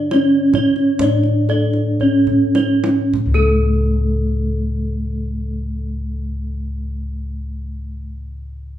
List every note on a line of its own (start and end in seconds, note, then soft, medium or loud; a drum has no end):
0.00 0.12 D4 medium
0.00 0.17 D5 medium
0.11 1.02 C#4 medium
0.11 0.19 D4 medium
0.11 0.52 C#5 medium
0.11 0.60 C#5 medium
0.11 kendang slap soft
0.11 kendang high medium
0.54 0.98 C#5 medium
0.54 kendang high medium
0.54 kendang low medium
0.76 kendang slap soft
0.99 4.31 A2 medium
0.99 1.55 C#5 medium
0.99 1.47 D5 medium
0.99 kendang low medium
1.04 2.02 D4 medium
1.23 kendang slap soft
1.49 2.07 A4 medium
1.49 1.98 D5 medium
1.49 kendang slap soft
1.73 kendang slap soft
2.00 3.15 C#4 medium
2.00 2.09 D4 soft
2.00 2.63 C#5 soft
2.00 2.52 C#5 medium
2.00 kendang low soft
2.27 kendang low medium
2.55 3.10 C#5 medium
2.55 kendang high medium
2.84 kendang high medium
3.14 kendang low medium
3.26 8.01 C#2 loud
3.34 8.10 A3 medium
3.34 8.09 A4 medium
3.34 8.10 A4 medium